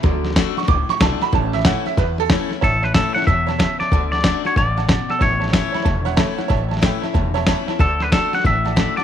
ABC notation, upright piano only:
X:1
M:4/4
L:1/8
Q:"Swing" 1/4=186
K:A
V:1 name="Upright piano"
[F,A,D] z2 c' d' c' a b | [E,A,Ca] e f e B A2 z | [cea] [cea] [cea] [cea] [cea] [cea] [cea] [cea] | [dfa] [dfa] [dfa] [dfa] [dfa] [dfa] [dfa] [dfa] |
[cea] [cea] [cea] [ceb] [cea] [cef] [cea] [cef] | [cea] [cea] [ce=g] [cea] [cea] [cea] [cea] [cea] | [dfa] [dfb] [dfa] [dfa] [dfa] [dfa] [dfa] [dfa] |]